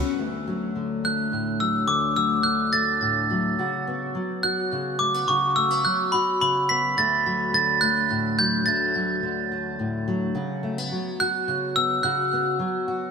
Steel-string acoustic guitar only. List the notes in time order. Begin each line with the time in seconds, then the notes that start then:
0.19 D2 A3
0.48 F#3
0.76 D3
1.04 A3
1.32 A2
1.60 F#3
1.88 D2 A3
2.16 F#3
2.44 D3
2.73 A3
3.01 A2
3.31 F#3
3.59 C#3 F#4
3.87 B3
4.15 F#3
4.44 F#4
4.72 C#3
5.00 A3
5.14 B3
5.29 C#3 F#4
5.56 A3
5.71 B3
5.85 F#3
6.14 F#4
6.41 C#3
6.70 B3
6.97 D2 A3
7.26 F#3
7.54 D3
7.83 A3
8.10 A2
8.39 F#3
8.66 D2 A3
8.95 F#3
9.23 D3
9.52 A3
9.79 A2
10.08 F#3
10.35 C#3 F#4
10.63 A3
10.78 B3
10.92 F#3
11.21 F#4
11.48 C#3
11.77 B3
12.04 C#3 F#4
12.33 B3
12.59 F#3
12.88 F#4